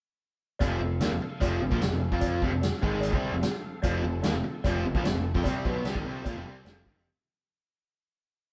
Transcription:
0.59 F1 F2 C3 F3 C4 A4 F5, kick, closed hi-hat, cowbell
0.80 F1 F2 C3
1.00 D#2 D#3 A#3, snare, closed hi-hat, cowbell
1.10 F1 F2 C3
1.21 muted picked electric bass stroke, muted overdriven electric guitar stroke
1.41 F1 F2 C3 F3, kick, closed hi-hat, cowbell
1.62 F1 F2 C3
1.72 A#1 A#2 F3, kick
1.81 F1 F2 C3, snare, closed hi-hat, cowbell
1.92 F1 F2 C3
2.11 F2 F3 C4 F4, kick
2.21 kick, closed hi-hat, cowbell
2.42 F1 F2 C3, kick
2.52 F1 F2 C3
2.61 snare, closed hi-hat, cowbell
2.73 snare
2.82 G#1 G#2 D#3 G#3, kick
3.00 closed hi-hat, cowbell
3.12 C2 C3 G3 C4, kick
3.32 F1 F2 C3
3.41 snare, closed hi-hat, cowbell
3.82 F1 F2 C3 F3 C4 F4 A4, kick, closed hi-hat, cowbell
4.03 F1 F2 C3
4.22 D#2 D#3 A#3, snare, closed hi-hat, cowbell
4.33 F1 F2 C3, snare
4.44 muted picked electric bass stroke, muted overdriven electric guitar stroke
4.64 F1 F2 C3 F3, kick, closed hi-hat, cowbell
4.85 F1 F2 C3
4.94 A#1 A#2 F3, kick
5.04 F1 F2 C3, snare, closed hi-hat, cowbell
5.15 F1 F2 C3
5.35 F2 F3 C4, kick
5.44 C2 C3, kick, closed hi-hat, cowbell
5.48 G3 C4
5.65 B1 B2, kick
5.69 F#3 B3
5.84 C2 C3 G3, snare, closed hi-hat, cowbell
5.95 G#1 G#2 D#3, kick
6.05 C2 C3 G3 C4
6.25 A#1 A#2 F3, kick, closed hi-hat, cowbell
6.35 F1 F2 C3
6.46 C2 C3 G3 C4
6.65 F1 F2 C3 F3, snare, closed hi-hat, cowbell
6.69 F2 C3 F3
6.86 G#1 G#2 D#3, kick
6.96 F1 F2 C3

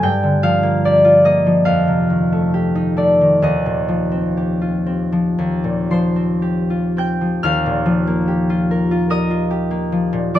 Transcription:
0.03 G2 G5
0.23 D3
0.43 F3 F5
0.63 A#3
0.85 G4 D5
1.04 F4
1.25 A#3 D#5
1.46 F3
1.65 F2 F5
1.88 C3
2.10 D#3
2.32 A3
2.54 G4
2.75 D#4
2.97 A3 D5
3.21 D#3
3.42 D#2 D#5
3.66 A#2
3.88 F3
4.12 C4
4.37 G4
4.61 F4
4.86 C4
5.12 F3
5.38 D#2
5.64 A#2
5.91 F3 C5 C6
6.16 C4
6.42 G4
6.70 F4
6.97 C4 G5 G6
7.21 F3
7.43 D#2 F5 F6
7.66 A#2
7.86 F3
8.07 A#3
8.28 G4
8.50 F4
8.71 A#4
8.91 F4
9.10 A#4 D#5 D#6
9.30 F4
9.51 G4
9.71 A#3
9.92 F3
10.13 A#2
10.34 F3 D5 D6

